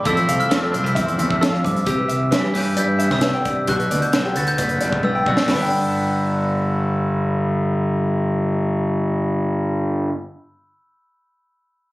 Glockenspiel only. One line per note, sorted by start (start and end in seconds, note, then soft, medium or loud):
0.07 0.40 E6 medium
0.40 1.26 F6 medium
1.41 1.64 E6 medium
1.65 1.87 D6 medium
1.87 2.57 E6 medium
2.57 2.77 G6 medium
2.78 3.09 G6 medium
3.12 3.70 E6 medium
3.69 4.03 F#6 loud
4.02 4.37 G6 medium
4.37 4.48 A6 medium
4.48 4.90 G6 medium
5.04 5.26 E6 medium
5.28 5.38 E6 medium
5.51 10.10 B5 medium